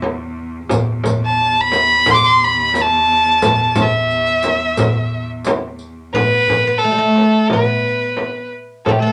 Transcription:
Already playing: cello E2
0.02 darbuka tek, frame drum
0.69 cello E2, riq, frame drum, darbuka dum
1.04 riq, frame drum, darbuka dum
1.25 violin A5
1.56 riq, darbuka ka
1.61 violin B5
1.72 riq, darbuka tek, frame drum
2.06 riq, frame drum, darbuka dum
2.11 violin C6 D6
2.25 violin C6
2.41 violin B5, riq, darbuka ka
2.58 darbuka ka
2.74 riq, darbuka tek, frame drum
2.81 violin A5
3.42 riq, frame drum, darbuka dum
3.76 riq, frame drum, darbuka dum
3.82 violin E5
4.11 riq, darbuka ka
4.27 riq, darbuka ka
4.43 riq, frame drum
4.77 riq, darbuka dum, frame drum
5.30 darbuka ka
5.45 riq, darbuka tek, frame drum
5.79 riq, darbuka ka
6.14 oud B3, violin B4, darbuka dum, frame drum
6.48 darbuka dum, frame drum
6.67 oud B3
6.78 violin A4
6.82 oud A3, darbuka ka
6.92 oud G3
6.98 oud A3
7.15 darbuka tek, frame drum
7.48 violin B4, frame drum, darbuka dum
7.53 oud B3
8.17 darbuka tek, frame drum
8.53 darbuka ka
8.85 oud A3, violin A4, frame drum, darbuka dum
8.92 violin G4
8.99 oud A3, violin A4
9.07 oud B3

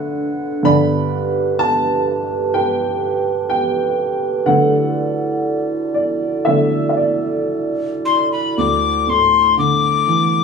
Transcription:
Already playing: upright piano D3 F#3 A3 F#4 B4 D5 E5, glass harmonica D4 A4 F#5
0.63 upright piano G2 D3 B3 D5 B5, glass harmonica G4 B4
1.59 upright piano A5
2.54 upright piano B4 G5
3.50 upright piano G5
4.46 upright piano D3 F#3 A3 A4 F#5, glass harmonica E4 F#4 D5
5.94 upright piano D5
6.45 upright piano D3 F#3 A3 A4 E5
6.89 upright piano E5
6.97 upright piano D5
8.05 tin whistle C6
8.32 tin whistle B5
8.58 upright piano D2, tin whistle D6
9.07 upright piano A2, tin whistle C6
9.57 upright piano D3, tin whistle D6
10.07 upright piano E3

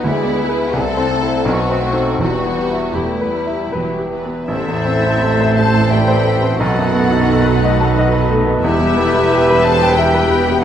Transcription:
0.03 grand piano D2, double bass section D2, cello section D2, french horn section G#3 B4, viola section G#3 G#4, violin section E4 D5
0.25 grand piano B3
0.41 viola section B3 E4, violin section B4
0.49 grand piano G#4 B4
0.73 grand piano C2, double bass section C2, cello section C3, french horn section A3 C5, violin section A4
0.77 viola section C4 E4, violin section A4
0.97 grand piano C4
1.12 viola section A3 C4, violin section C5
1.22 grand piano E4 A4
1.45 double bass section B1, grand piano B1, cello section B2, french horn section A3 C5, viola section B3 D#4, violin section F#4 B4
1.70 grand piano C4
1.82 viola section A3 C4, violin section C5
1.93 grand piano D#4 A4
2.18 double bass section E1, cello section E2, grand piano E2, viola section E3 E4, violin section F#4 G4, french horn section B4
2.22 french horn section G3
2.44 grand piano B3
2.55 viola section G3 G4, violin section B4
2.71 grand piano E4
2.93 double bass section E1, cello section E2, french horn section G3 B4, viola section A3, violin section E4 G4, grand piano G4
3.21 grand piano B4
3.31 viola section G3, violin section B4
3.47 grand piano E5
3.70 double bass section E1, cello section E2, viola section F#3, violin section G4, grand piano B4
3.98 grand piano G4
4.10 viola section E3, violin section B4
4.25 grand piano B3
4.48 grand piano A1, double bass section A1, tuba A1, cello section A2, viola section C3 E4, french horn section E3 A4, violin section E4 E5, flute A4, clarinet C5, trumpet section C5
4.68 grand piano E2, viola section E3
4.85 viola section A3, grand piano C4
5.03 viola section C4, grand piano E4
5.21 viola section A3, grand piano A4
5.41 viola section E3, grand piano C5
5.56 viola section C3, violin section A4 A5, flute C5, grand piano E5
5.74 viola section E3, grand piano A5
5.90 viola section A3, violin section G4 G5, flute B4, clarinet D5, grand piano E5
6.07 viola section C4, grand piano C5
6.24 viola section A3, grand piano A4, clarinet E5
6.41 viola section E3, grand piano C4
6.57 tuba B1, double bass section B1, grand piano B1, cello section B2, viola section D#3 D#4, french horn section D#3 A4, violin section F#4 F#5, flute A4, trumpet section B4, clarinet D#5
6.76 grand piano F#2, viola section F#3
6.94 viola section A3, grand piano B3, clarinet F#4
7.10 viola section F#3, grand piano D#4
7.27 viola section D#3, grand piano A4
7.45 viola section F#3, grand piano B4
7.61 viola section A3, grand piano D#5
7.78 viola section F#3, grand piano A5
7.95 viola section D#3, grand piano D#5
8.12 viola section F#3, grand piano B4
8.28 viola section A3, grand piano A4
8.44 viola section F#3, grand piano B3
8.62 double bass section E1, tuba E1, grand piano E2, cello section E2, viola section E3 B3, french horn section E3 G4, violin section E4 E5, flute G4, clarinet G4, trumpet section B4
8.80 grand piano B2, viola section G3
8.96 viola section E3, grand piano B3, clarinet A4
9.13 viola section G3, grand piano E4
9.30 viola section E3, grand piano G4, clarinet B4
9.48 viola section G3, grand piano B4
9.63 viola section E3, violin section A4 A5, flute C5, clarinet E5, grand piano E5
9.80 viola section G3, grand piano G5
9.95 viola section E3, french horn section E3 G4, violin section G4 G5, flute B4, grand piano E5
10.00 trumpet section B4
10.12 viola section G3, grand piano B4
10.29 viola section E3, grand piano G4
10.47 viola section G3, grand piano B3
10.61 french horn section A3 F#4

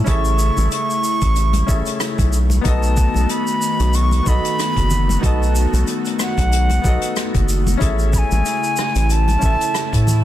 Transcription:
Already playing: analog synth pad C#3 A3 E4, grand piano C#4 E4 A4 E5
0.04 analog synth bass A1, grand piano C#4 E4 G#4, kick, closed hi-hat, shaker
0.09 grand piano A4 E5, flute C#6
0.25 shaker
0.39 shaker
0.57 analog synth bass A1, high conga, shaker
0.72 flute C#6, closed hi-hat, shaker
0.90 shaker
1.04 shaker
1.21 analog synth bass A1, kick, closed hi-hat, shaker
1.36 closed hi-hat, shaker
1.53 closed hi-hat, high conga, shaker
1.66 analog synth bass A1, grand piano C#4 E4 G#4 A4 E5, kick, shaker
1.86 closed hi-hat, shaker
2.00 cross-stick, closed hi-hat, shaker
2.19 analog synth bass B1, kick, closed hi-hat, shaker
2.32 analog synth pad D#3 B3 F#4, shaker
2.50 high conga, shaker
2.61 analog synth bass B1, grand piano B3 D#4 F#4, kick, closed hi-hat, shaker
2.66 grand piano A4 D#5, flute A5
2.83 shaker
2.97 kick, shaker
3.14 analog synth bass B1, high conga, shaker
3.29 flute B5, closed hi-hat, shaker
3.47 shaker
3.62 shaker
3.80 analog synth bass B1, closed hi-hat, shaker
3.94 flute C#6, closed hi-hat, shaker
4.11 closed hi-hat, high conga, shaker
4.23 analog synth bass B1, grand piano B3 D#4 F#4, kick, shaker
4.28 grand piano A4 D#5, flute B5
4.45 closed hi-hat, shaker
4.59 cross-stick, closed hi-hat, shaker
4.76 analog synth bass F#1, kick, closed hi-hat, shaker
4.91 low conga, shaker
5.09 high conga, shaker
5.19 analog synth bass B1, grand piano B3 D#4 F#4, kick
5.23 grand piano A4 D#5, flute A5, closed hi-hat, shaker
5.43 shaker
5.56 shaker
5.73 analog synth bass B1, closed hi-hat, high conga, shaker
5.87 closed hi-hat, shaker
6.05 closed hi-hat, shaker
6.19 flute F#5, cross-stick, shaker
6.38 analog synth bass B1, kick, closed hi-hat, shaker
6.52 closed hi-hat, shaker
6.70 closed hi-hat, high conga, shaker
6.81 analog synth bass B1, grand piano B3 D#4 F#4, kick, shaker
6.87 grand piano A4 D#5
7.01 closed hi-hat, shaker
7.16 cross-stick, closed hi-hat, shaker
7.34 analog synth bass F#1, kick, closed hi-hat, shaker
7.49 shaker
7.67 high conga, shaker
7.77 analog synth bass A1, analog synth pad C#3 E4, grand piano C#4 E4 G#4, kick, shaker
7.82 grand piano A4 E5, closed hi-hat
7.99 shaker
8.13 flute B5, kick, shaker
8.18 flute G#5
8.31 analog synth bass A1, high conga, shaker
8.45 closed hi-hat, shaker
8.64 shaker
8.77 cross-stick, shaker
8.95 analog synth bass A1, closed hi-hat, shaker
9.10 flute A5, closed hi-hat, shaker
9.28 closed hi-hat, high conga, shaker
9.38 analog synth bass A1, grand piano C#4 E4, shaker
9.43 grand piano A4 E5, kick
9.61 closed hi-hat, shaker
9.75 cross-stick, closed hi-hat, shaker
9.93 analog synth bass A2, kick, closed hi-hat, shaker
10.07 low conga, shaker

